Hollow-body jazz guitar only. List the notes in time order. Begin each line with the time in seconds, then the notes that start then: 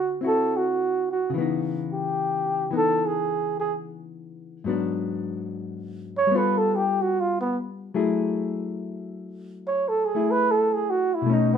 Already playing: D3 C4 E4 F#4
0.21 C4 E4 F#4
1.30 C#3
1.34 E3 B3
1.41 D#4
2.71 E3 B3 D#4
4.64 G#2 F#3 B3
4.69 D4
6.27 G3
6.31 B3 F4
6.38 A4
7.94 F#3 A3 E4 G#4
10.15 A3 E4 G#4
11.22 B2
11.26 A3 C#4
11.33 D#4